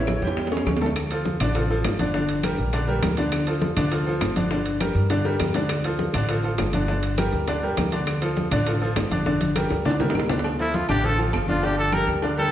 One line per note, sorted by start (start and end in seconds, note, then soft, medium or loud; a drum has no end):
0.00 0.17 A1 loud
0.00 0.17 E3 medium
0.00 0.17 E4 medium
0.00 0.68 C#5 medium
0.00 0.17 E5 medium
0.07 high bongo medium
0.07 high conga medium
0.07 low timbale medium
0.07 claves medium
0.22 0.63 E2 loud
0.22 0.46 G3 medium
0.22 0.47 G4 medium
0.22 0.47 G5 medium
0.22 high bongo soft
0.22 high conga soft
0.27 high timbale loud
0.37 high bongo medium
0.37 high conga soft
0.37 low timbale medium
0.47 low timbale medium
0.52 0.76 C#4 medium
0.52 0.76 C#5 medium
0.52 0.76 C#6 medium
0.52 high bongo medium
0.52 high conga soft
0.57 low timbale loud
0.66 1.35 D2 medium
0.66 high bongo medium
0.66 high conga medium
0.66 low timbale medium
0.66 claves medium
0.77 low timbale medium
0.81 0.94 A3 medium
0.81 0.94 A4 medium
0.81 0.94 A5 medium
0.81 low bongo loud
0.81 high conga soft
0.86 low timbale medium
0.96 high bongo medium
0.96 high conga soft
0.96 high timbale loud
0.96 claves medium
1.11 1.35 F3 medium
1.11 1.35 F4 medium
1.11 1.35 A4 medium
1.11 high bongo soft
1.11 high conga soft
1.11 high timbale medium
1.25 high bongo soft
1.25 high conga medium
1.25 low timbale medium
1.40 1.81 A1 loud
1.40 1.53 D3 medium
1.40 1.53 D4 medium
1.40 1.53 D5 loud
1.40 low conga medium
1.40 high timbale loud
1.40 claves medium
1.55 1.67 F3 medium
1.55 1.68 F4 medium
1.55 1.68 A4 medium
1.55 high bongo medium
1.55 high conga soft
1.55 low conga medium
1.55 high timbale medium
1.69 1.94 F3 medium
1.69 1.94 F4 medium
1.69 1.95 A4 medium
1.69 high bongo soft
1.69 high conga soft
1.84 2.53 G1 medium
1.84 high bongo medium
1.84 low bongo medium
1.84 high conga soft
1.84 high timbale loud
1.84 low timbale medium
1.84 claves medium
1.99 2.12 D3 medium
1.99 2.12 D4 medium
1.99 2.12 D5 medium
1.99 high bongo soft
1.99 high conga medium
1.99 high timbale medium
2.14 2.38 D3 medium
2.14 2.39 D4 medium
2.14 2.39 D5 medium
2.14 high bongo medium
2.14 high conga soft
2.29 high conga soft
2.29 high timbale medium
2.43 2.68 G3 medium
2.43 2.68 G4 medium
2.43 2.68 A#4 medium
2.43 high bongo medium
2.43 high conga medium
2.43 high timbale loud
2.43 low timbale medium
2.43 claves medium
2.58 3.00 A#1 loud
2.58 high bongo soft
2.58 high conga soft
2.73 2.85 D3 medium
2.73 2.85 D4 medium
2.73 2.86 D5 medium
2.73 high bongo medium
2.73 high conga soft
2.73 high timbale medium
2.88 3.12 G3 medium
2.88 3.12 G4 medium
2.88 3.12 A#4 medium
2.88 high bongo soft
2.88 high conga soft
3.03 3.71 D2 medium
3.03 high bongo medium
3.03 low bongo medium
3.03 high conga medium
3.03 high timbale medium
3.03 low timbale medium
3.03 claves medium
3.17 3.42 D3 medium
3.17 3.42 D4 medium
3.17 3.42 D5 medium
3.17 high bongo soft
3.17 high timbale medium
3.32 high bongo medium
3.32 high conga soft
3.32 high timbale loud
3.32 claves medium
3.47 3.71 F3 medium
3.47 3.72 F4 medium
3.47 3.72 A4 medium
3.47 high bongo soft
3.47 high conga soft
3.47 high timbale medium
3.61 high bongo medium
3.61 high conga loud
3.61 low timbale medium
3.76 4.18 D2 loud
3.76 3.89 D3 medium
3.76 3.89 D4 loud
3.76 3.89 D5 loud
3.76 low conga medium
3.76 high timbale loud
3.76 claves medium
3.91 4.04 F3 medium
3.91 4.04 F4 medium
3.91 4.04 A4 medium
3.91 high bongo medium
3.91 high conga soft
3.91 high timbale medium
4.06 4.31 F3 medium
4.06 4.31 F4 medium
4.06 4.31 A4 medium
4.06 high bongo soft
4.06 high conga soft
4.21 4.90 G1 medium
4.21 high bongo medium
4.21 low bongo medium
4.21 high conga soft
4.21 high timbale medium
4.21 low timbale medium
4.21 claves medium
4.36 4.48 D3 medium
4.36 4.49 D4 medium
4.36 4.49 D5 medium
4.36 high bongo soft
4.36 high conga medium
4.36 high timbale medium
4.51 4.75 D3 medium
4.51 4.75 D4 medium
4.51 4.76 D5 medium
4.51 high bongo medium
4.51 high conga soft
4.66 high conga soft
4.66 high timbale medium
4.80 5.05 G3 medium
4.80 5.05 G4 medium
4.80 5.05 A#4 medium
4.80 high bongo medium
4.80 high conga loud
4.80 high timbale loud
4.80 low timbale medium
4.80 claves medium
4.95 5.36 G2 loud
4.95 high bongo soft
4.95 high conga soft
5.10 5.22 D3 medium
5.10 5.22 D4 medium
5.10 5.23 D5 medium
5.10 high bongo medium
5.10 high conga soft
5.10 high timbale medium
5.25 5.49 G3 medium
5.25 5.49 G4 medium
5.25 5.50 A#4 medium
5.25 high bongo medium
5.25 high conga soft
5.39 6.08 D2 medium
5.39 high bongo medium
5.39 high conga medium
5.39 high timbale loud
5.39 low timbale medium
5.39 claves medium
5.54 5.79 D3 medium
5.54 5.79 D4 medium
5.54 5.79 D5 medium
5.54 low bongo loud
5.54 high timbale medium
5.69 high bongo medium
5.69 high conga soft
5.69 high timbale loud
5.69 claves medium
5.84 6.09 F3 medium
5.84 6.09 F4 medium
5.84 6.09 A4 medium
5.84 high bongo soft
5.84 high conga soft
5.84 high timbale medium
5.99 high bongo medium
5.99 high conga medium
5.99 low timbale medium
6.13 6.55 A1 loud
6.13 6.26 D3 loud
6.13 6.27 D4 medium
6.13 6.27 D5 medium
6.13 low conga medium
6.13 high timbale medium
6.13 claves medium
6.29 6.41 F3 medium
6.29 6.41 F4 medium
6.29 6.42 A4 medium
6.29 high bongo medium
6.29 high conga soft
6.29 high timbale medium
6.43 6.68 F3 medium
6.43 6.68 F4 medium
6.43 6.68 A4 medium
6.43 high bongo soft
6.43 high conga soft
6.58 7.27 G1 medium
6.58 high bongo medium
6.58 low bongo medium
6.58 high conga soft
6.58 high timbale medium
6.58 low timbale medium
6.58 claves medium
6.73 6.86 D3 medium
6.73 6.86 D4 medium
6.73 6.86 D5 medium
6.73 high bongo soft
6.73 high conga medium
6.73 high timbale medium
6.88 7.13 D3 medium
6.88 7.13 D4 medium
6.88 7.13 D5 medium
6.88 high bongo medium
6.88 high conga soft
7.03 high conga soft
7.03 high timbale medium
7.18 7.42 G3 medium
7.18 7.42 G4 medium
7.18 7.42 A#4 medium
7.18 high bongo medium
7.18 high conga loud
7.18 high timbale medium
7.18 low timbale medium
7.18 claves medium
7.32 7.74 D2 loud
7.32 high bongo soft
7.32 high conga soft
7.48 7.60 D3 medium
7.48 7.60 D4 loud
7.48 7.60 D5 medium
7.48 high bongo medium
7.48 high conga soft
7.48 high timbale medium
7.62 7.87 G3 medium
7.62 7.87 G4 medium
7.62 7.87 A#4 medium
7.62 high bongo soft
7.62 high conga soft
7.77 8.46 D2 medium
7.77 high bongo medium
7.77 low bongo medium
7.77 high conga medium
7.77 high timbale medium
7.77 low timbale medium
7.77 claves medium
7.92 8.17 D3 medium
7.92 8.17 D4 medium
7.92 8.17 D5 medium
7.92 high bongo soft
7.92 high conga soft
7.92 high timbale medium
8.07 high bongo medium
8.07 high conga soft
8.07 high timbale loud
8.07 claves medium
8.22 8.46 F3 medium
8.22 8.46 F4 medium
8.22 8.46 A4 medium
8.22 high bongo soft
8.22 high conga soft
8.22 high timbale medium
8.37 high bongo medium
8.37 high conga medium
8.37 low timbale medium
8.51 8.93 A1 loud
8.51 8.64 D3 loud
8.51 8.64 D4 medium
8.51 8.64 D5 medium
8.51 low conga medium
8.51 high timbale loud
8.51 claves medium
8.66 8.79 F3 medium
8.66 8.79 F4 medium
8.66 8.79 A4 medium
8.66 high bongo medium
8.66 high conga soft
8.66 high timbale medium
8.81 9.06 F3 medium
8.81 9.06 F4 medium
8.81 9.06 A4 medium
8.81 high bongo soft
8.81 high conga soft
8.96 9.65 G1 loud
8.96 high bongo medium
8.96 low bongo medium
8.96 high conga soft
8.96 high timbale loud
8.96 low timbale medium
8.96 claves medium
9.11 9.23 D3 medium
9.11 9.23 D4 medium
9.11 9.23 D5 medium
9.11 high bongo soft
9.11 high conga medium
9.11 high timbale medium
9.26 9.50 D3 medium
9.26 9.50 D4 medium
9.26 9.50 D5 medium
9.26 high bongo medium
9.26 high conga medium
9.41 high conga medium
9.41 high timbale medium
9.55 9.80 G3 medium
9.55 9.80 G4 medium
9.55 9.80 A#4 medium
9.55 high bongo medium
9.55 high conga medium
9.55 high timbale loud
9.55 low timbale medium
9.55 claves medium
9.70 10.12 D2 loud
9.70 high bongo medium
9.70 high timbale medium
9.85 9.97 D3 medium
9.85 9.98 D4 medium
9.85 9.98 D5 medium
9.85 low bongo medium
9.85 low conga medium
9.90 high timbale loud
10.00 10.24 G3 medium
10.00 10.24 G4 medium
10.00 10.25 A#4 medium
10.00 low bongo medium
10.00 low conga loud
10.00 high timbale medium
10.10 low timbale loud
10.14 10.83 D2 medium
10.14 low bongo medium
10.14 claves medium
10.19 low timbale loud
10.29 10.42 D3 medium
10.29 10.42 D4 medium
10.29 10.42 D5 medium
10.29 low bongo loud
10.29 low conga medium
10.29 low timbale loud
10.39 low timbale medium
10.44 cowbell loud
10.44 high conga soft
10.44 low agogo loud
10.44 claves medium
10.59 10.83 F3 medium
10.59 10.77 E4 medium
10.59 10.84 F4 medium
10.59 10.84 A4 medium
10.59 high conga soft
10.59 low agogo medium
10.74 10.89 F4 medium
10.74 cowbell medium
10.74 high conga loud
10.74 low timbale medium
10.88 11.30 A1 loud
10.88 11.01 D3 medium
10.88 11.01 D4 loud
10.88 11.07 G4 medium
10.88 11.02 D5 loud
10.88 low conga medium
10.88 low agogo loud
10.88 claves medium
11.03 11.16 F3 medium
11.03 11.16 F4 medium
11.03 11.16 A4 medium
11.03 11.19 A4 medium
11.03 cowbell loud
11.03 high conga soft
11.03 low conga medium
11.03 low agogo medium
11.18 11.43 F3 medium
11.18 11.43 F4 medium
11.18 11.43 A4 medium
11.18 high conga soft
11.18 low agogo medium
11.33 12.02 G1 medium
11.33 cowbell medium
11.33 high conga soft
11.33 low timbale medium
11.33 low agogo loud
11.33 claves medium
11.48 11.60 D3 medium
11.48 11.61 D4 medium
11.48 11.66 F4 medium
11.48 11.61 D5 medium
11.48 cowbell medium
11.48 high conga medium
11.63 11.87 D3 medium
11.63 11.88 D4 medium
11.63 11.78 G4 medium
11.63 11.88 D5 medium
11.63 cowbell loud
11.63 high conga soft
11.63 low agogo medium
11.78 11.95 A4 medium
11.78 high conga soft
11.78 low agogo medium
11.92 12.17 G3 medium
11.92 12.17 G4 medium
11.92 12.17 A#4 medium
11.92 12.08 A#4 loud
11.92 cowbell medium
11.92 high conga loud
11.92 low timbale medium
11.92 low agogo loud
11.92 claves medium
12.07 12.48 D2 loud
12.07 cowbell medium
12.07 high conga soft
12.22 12.34 D3 medium
12.22 12.35 D4 medium
12.22 12.35 D5 medium
12.22 cowbell loud
12.22 high conga soft
12.22 low agogo medium
12.37 12.52 G3 medium
12.37 12.52 G4 medium
12.37 12.52 A4 loud
12.37 12.52 A#4 medium
12.37 high conga soft